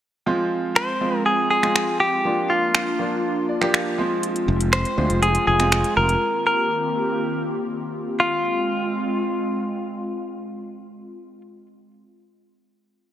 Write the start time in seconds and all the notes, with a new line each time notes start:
0.26 F3 G#3 C4 F4
0.76 C5, finger snap
1.01 F3 G#3 C4 F4
1.26 G#4
1.51 G#4
1.63 F3 G#3 C4 F4, finger snap
1.76 finger snap
2.00 G4
2.25 F3 A#3 D4 F4
2.50 F4
2.75 finger snap
2.99 F3 A#3 D4 F4
3.49 D5
3.61 F3 A#3 D4 G4, finger snap
3.74 F5, finger snap
3.98 F3 G#3 C4 F4 C6
4.23 closed hi-hat
4.36 closed hi-hat
4.48 F1
4.61 closed hi-hat
4.73 C5, finger snap, closed hi-hat
4.85 closed hi-hat
4.97 D2 F3 G#3 C4 F4
5.10 F1, closed hi-hat
5.23 G#4, closed hi-hat
5.35 closed hi-hat
5.47 F1 G#4
5.59 F3 G#3 C4 F4, finger snap, closed hi-hat
5.72 finger snap, closed hi-hat
5.84 closed hi-hat
5.97 F1 A#4
6.09 closed hi-hat
6.22 D#3 A#3 C4 G4
6.47 A#4
8.20 G#3 C4 F4